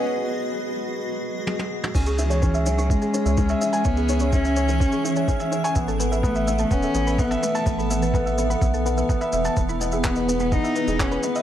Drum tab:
CC |----------------|x---------------|----------------|----------------|
SH |----------------|xxxxxxxxxxxxxxxx|xxxxxxxxxxxxxxxx|xxxxxxxxxxxxxxxx|
CP |----------------|----------------|----------------|----------------|
T1 |------------oo--|----------------|----------------|----------------|
T2 |---------------o|----------------|----------------|----------------|
BD |----------------|o---o---o---o---|o---o---o---o---|o---o---o---o---|

CC |----------------|----------------|
SH |xxxxxxxxxxxxxxxx|xxxxxxxxxxxxxxxx|
CP |----------------|----x-------x---|
T1 |----------------|----------------|
T2 |----------------|----------------|
BD |o---o---o---o---|o---o---o---o---|